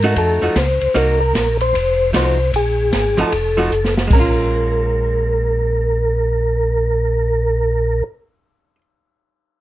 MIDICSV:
0, 0, Header, 1, 5, 480
1, 0, Start_track
1, 0, Key_signature, -5, "minor"
1, 0, Tempo, 394737
1, 1161, Time_signature, 4, 2, 24, 8
1, 11682, End_track
2, 0, Start_track
2, 0, Title_t, "Tonewheel organ"
2, 0, Program_c, 0, 16
2, 0, Note_on_c, 0, 70, 83
2, 176, Note_off_c, 0, 70, 0
2, 221, Note_on_c, 0, 69, 87
2, 699, Note_on_c, 0, 72, 83
2, 705, Note_off_c, 0, 69, 0
2, 1176, Note_on_c, 0, 70, 92
2, 1184, Note_off_c, 0, 72, 0
2, 1451, Note_off_c, 0, 70, 0
2, 1465, Note_on_c, 0, 70, 96
2, 1912, Note_off_c, 0, 70, 0
2, 1964, Note_on_c, 0, 72, 98
2, 2563, Note_off_c, 0, 72, 0
2, 2626, Note_on_c, 0, 72, 76
2, 3060, Note_off_c, 0, 72, 0
2, 3113, Note_on_c, 0, 68, 82
2, 3567, Note_off_c, 0, 68, 0
2, 3581, Note_on_c, 0, 68, 81
2, 3885, Note_off_c, 0, 68, 0
2, 3903, Note_on_c, 0, 69, 75
2, 4795, Note_off_c, 0, 69, 0
2, 5025, Note_on_c, 0, 70, 75
2, 9775, Note_off_c, 0, 70, 0
2, 11682, End_track
3, 0, Start_track
3, 0, Title_t, "Hollow-body jazz guitar"
3, 0, Program_c, 1, 26
3, 44, Note_on_c, 1, 57, 82
3, 45, Note_on_c, 1, 63, 85
3, 50, Note_on_c, 1, 66, 88
3, 485, Note_off_c, 1, 57, 0
3, 486, Note_off_c, 1, 63, 0
3, 488, Note_off_c, 1, 66, 0
3, 501, Note_on_c, 1, 53, 60
3, 508, Note_on_c, 1, 57, 69
3, 513, Note_on_c, 1, 63, 63
3, 521, Note_on_c, 1, 66, 72
3, 661, Note_off_c, 1, 53, 0
3, 664, Note_off_c, 1, 57, 0
3, 667, Note_off_c, 1, 63, 0
3, 670, Note_off_c, 1, 66, 0
3, 1148, Note_on_c, 1, 58, 64
3, 1151, Note_on_c, 1, 63, 71
3, 1158, Note_on_c, 1, 66, 69
3, 1431, Note_off_c, 1, 58, 0
3, 1432, Note_off_c, 1, 63, 0
3, 1435, Note_off_c, 1, 66, 0
3, 2593, Note_on_c, 1, 53, 63
3, 2601, Note_on_c, 1, 57, 58
3, 2602, Note_on_c, 1, 63, 58
3, 2609, Note_on_c, 1, 66, 66
3, 2872, Note_off_c, 1, 53, 0
3, 2876, Note_off_c, 1, 57, 0
3, 2877, Note_off_c, 1, 63, 0
3, 2880, Note_off_c, 1, 66, 0
3, 3859, Note_on_c, 1, 53, 74
3, 3867, Note_on_c, 1, 57, 73
3, 3873, Note_on_c, 1, 66, 76
3, 3874, Note_on_c, 1, 63, 78
3, 4018, Note_off_c, 1, 53, 0
3, 4022, Note_off_c, 1, 57, 0
3, 4025, Note_off_c, 1, 63, 0
3, 4025, Note_off_c, 1, 66, 0
3, 4342, Note_on_c, 1, 53, 59
3, 4346, Note_on_c, 1, 57, 66
3, 4352, Note_on_c, 1, 63, 68
3, 4357, Note_on_c, 1, 66, 65
3, 4499, Note_off_c, 1, 53, 0
3, 4501, Note_off_c, 1, 57, 0
3, 4504, Note_off_c, 1, 63, 0
3, 4507, Note_off_c, 1, 66, 0
3, 4956, Note_on_c, 1, 56, 61
3, 5039, Note_on_c, 1, 61, 71
3, 5100, Note_on_c, 1, 65, 70
3, 10641, Note_off_c, 1, 56, 0
3, 10682, Note_off_c, 1, 61, 0
3, 10713, Note_off_c, 1, 65, 0
3, 11682, End_track
4, 0, Start_track
4, 0, Title_t, "Tonewheel organ"
4, 0, Program_c, 2, 16
4, 0, Note_on_c, 2, 44, 87
4, 183, Note_off_c, 2, 44, 0
4, 191, Note_on_c, 2, 41, 81
4, 481, Note_off_c, 2, 41, 0
4, 515, Note_on_c, 2, 41, 37
4, 600, Note_off_c, 2, 41, 0
4, 678, Note_on_c, 2, 37, 95
4, 965, Note_off_c, 2, 37, 0
4, 991, Note_on_c, 2, 37, 38
4, 1077, Note_off_c, 2, 37, 0
4, 1157, Note_on_c, 2, 36, 83
4, 1624, Note_off_c, 2, 36, 0
4, 1635, Note_on_c, 2, 34, 81
4, 2103, Note_off_c, 2, 34, 0
4, 2117, Note_on_c, 2, 29, 79
4, 2584, Note_off_c, 2, 29, 0
4, 2599, Note_on_c, 2, 36, 88
4, 3065, Note_off_c, 2, 36, 0
4, 3076, Note_on_c, 2, 34, 78
4, 3543, Note_off_c, 2, 34, 0
4, 3550, Note_on_c, 2, 32, 78
4, 3838, Note_off_c, 2, 32, 0
4, 3853, Note_on_c, 2, 32, 37
4, 3942, Note_off_c, 2, 32, 0
4, 4033, Note_on_c, 2, 29, 79
4, 4501, Note_off_c, 2, 29, 0
4, 4512, Note_on_c, 2, 30, 85
4, 4980, Note_off_c, 2, 30, 0
4, 4988, Note_on_c, 2, 34, 80
4, 9757, Note_off_c, 2, 34, 0
4, 11682, End_track
5, 0, Start_track
5, 0, Title_t, "Drums"
5, 28, Note_on_c, 9, 51, 44
5, 149, Note_off_c, 9, 51, 0
5, 198, Note_on_c, 9, 51, 62
5, 199, Note_on_c, 9, 36, 23
5, 319, Note_off_c, 9, 51, 0
5, 320, Note_off_c, 9, 36, 0
5, 678, Note_on_c, 9, 38, 67
5, 678, Note_on_c, 9, 44, 54
5, 678, Note_on_c, 9, 51, 68
5, 680, Note_on_c, 9, 36, 28
5, 800, Note_off_c, 9, 38, 0
5, 800, Note_off_c, 9, 44, 0
5, 800, Note_off_c, 9, 51, 0
5, 802, Note_off_c, 9, 36, 0
5, 988, Note_on_c, 9, 51, 42
5, 1110, Note_off_c, 9, 51, 0
5, 1162, Note_on_c, 9, 36, 19
5, 1163, Note_on_c, 9, 51, 64
5, 1283, Note_off_c, 9, 36, 0
5, 1284, Note_off_c, 9, 51, 0
5, 1642, Note_on_c, 9, 36, 21
5, 1642, Note_on_c, 9, 38, 60
5, 1642, Note_on_c, 9, 44, 56
5, 1642, Note_on_c, 9, 51, 60
5, 1764, Note_off_c, 9, 36, 0
5, 1764, Note_off_c, 9, 38, 0
5, 1764, Note_off_c, 9, 44, 0
5, 1764, Note_off_c, 9, 51, 0
5, 1950, Note_on_c, 9, 51, 44
5, 2072, Note_off_c, 9, 51, 0
5, 2122, Note_on_c, 9, 36, 22
5, 2128, Note_on_c, 9, 51, 62
5, 2244, Note_off_c, 9, 36, 0
5, 2250, Note_off_c, 9, 51, 0
5, 2602, Note_on_c, 9, 36, 21
5, 2605, Note_on_c, 9, 38, 67
5, 2605, Note_on_c, 9, 44, 60
5, 2605, Note_on_c, 9, 51, 70
5, 2723, Note_off_c, 9, 36, 0
5, 2727, Note_off_c, 9, 38, 0
5, 2727, Note_off_c, 9, 44, 0
5, 2727, Note_off_c, 9, 51, 0
5, 3082, Note_on_c, 9, 36, 23
5, 3084, Note_on_c, 9, 51, 60
5, 3203, Note_off_c, 9, 36, 0
5, 3205, Note_off_c, 9, 51, 0
5, 3558, Note_on_c, 9, 36, 23
5, 3558, Note_on_c, 9, 38, 64
5, 3558, Note_on_c, 9, 44, 51
5, 3558, Note_on_c, 9, 51, 58
5, 3679, Note_off_c, 9, 36, 0
5, 3679, Note_off_c, 9, 38, 0
5, 3679, Note_off_c, 9, 44, 0
5, 3679, Note_off_c, 9, 51, 0
5, 3867, Note_on_c, 9, 51, 43
5, 3988, Note_off_c, 9, 51, 0
5, 4038, Note_on_c, 9, 36, 19
5, 4039, Note_on_c, 9, 51, 62
5, 4159, Note_off_c, 9, 36, 0
5, 4160, Note_off_c, 9, 51, 0
5, 4519, Note_on_c, 9, 44, 52
5, 4641, Note_off_c, 9, 44, 0
5, 4676, Note_on_c, 9, 38, 54
5, 4797, Note_off_c, 9, 38, 0
5, 4833, Note_on_c, 9, 38, 73
5, 4955, Note_off_c, 9, 38, 0
5, 4992, Note_on_c, 9, 49, 78
5, 4993, Note_on_c, 9, 36, 92
5, 5114, Note_off_c, 9, 36, 0
5, 5114, Note_off_c, 9, 49, 0
5, 11682, End_track
0, 0, End_of_file